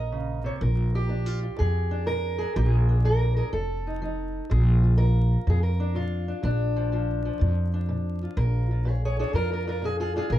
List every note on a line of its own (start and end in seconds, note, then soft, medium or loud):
0.00 0.49 A#1 medium
0.00 0.62 A#4 medium
0.00 0.45 D#5 loud
0.12 0.44 C#3 medium
0.44 0.60 C3 medium
0.44 0.55 C#5 medium
0.61 1.46 A#1 loud
0.61 1.07 A#2 medium
0.61 0.94 A#4 medium
0.95 2.06 G4 medium
1.09 1.55 A#2 medium
1.09 1.26 D4 medium
1.26 1.42 F4 soft
1.43 1.58 F4 soft
1.57 2.44 F2 medium
1.57 2.03 A#2 medium
1.57 2.37 G#4 medium
1.91 2.40 D4 medium
2.06 2.52 A#2 medium
2.06 2.88 A#4 loud
2.38 2.54 D4 soft
2.38 2.55 G#4 medium
2.55 3.41 A#1 loud
2.55 3.01 A#2 medium
2.55 2.67 G4 medium
2.67 3.36 G#4 medium
2.89 3.51 D4 medium
3.05 3.50 A#2 medium
3.05 3.35 A#4 medium
3.37 3.51 G#4 soft
3.37 3.52 A#4 medium
3.53 4.37 F1 medium
3.53 3.98 F3 medium
3.53 4.50 A4 medium
3.87 4.02 D#4 soft
4.02 4.47 F3 medium
4.02 4.49 D#4 soft
4.50 5.35 A#1 loud
4.50 4.95 A#2 medium
4.50 4.97 G#4 medium
4.83 5.95 F4 medium
4.98 5.44 A#2 medium
4.98 5.47 A#4 loud
5.47 6.31 F2 medium
5.47 5.92 A#2 medium
5.47 5.63 G#4 medium
5.63 5.95 A#4 medium
5.80 6.28 D4 medium
5.95 6.41 A#2 medium
5.95 6.44 F4 medium
6.28 6.45 D4 soft
6.43 7.28 A#1 loud
6.43 6.89 A#2 medium
6.43 7.41 D4 medium
6.76 6.92 F3 medium
6.92 7.38 A#2 medium
6.92 7.25 F3 medium
7.25 10.32 F3 soft
7.39 8.25 F2 medium
7.39 7.85 A#2 medium
7.74 8.91 D4 medium
7.89 8.34 A#2 medium
8.23 8.71 F4 soft
8.37 9.22 A#1 loud
8.37 8.83 A#2 medium
8.37 8.89 A#4 medium
8.71 8.88 F4 medium
8.85 9.31 A#2 medium
8.85 9.03 G#4 medium
8.89 9.04 C#5 loud
9.05 9.19 G#4 medium
9.05 9.19 C#5 medium
9.19 9.66 D4 medium
9.19 9.34 G#4 medium
9.19 9.35 C#5 medium
9.33 10.18 F2 medium
9.33 9.80 A#2 medium
9.33 9.51 F4 medium
9.33 9.51 A#4 loud
9.52 9.66 F4 medium
9.52 9.67 A#4 medium
9.67 10.14 D4 medium
9.67 9.83 F4 medium
9.67 9.84 A#4 medium
9.82 10.28 A#2 medium
9.82 9.99 G#4 medium
10.00 10.11 F4 medium
10.00 10.16 G#4 medium
10.16 10.30 D4 soft
10.16 10.24 F4 medium
10.16 10.33 G#4 medium
10.29 10.39 A#1 loud
10.29 10.39 A#2 medium
10.29 10.39 A#4 medium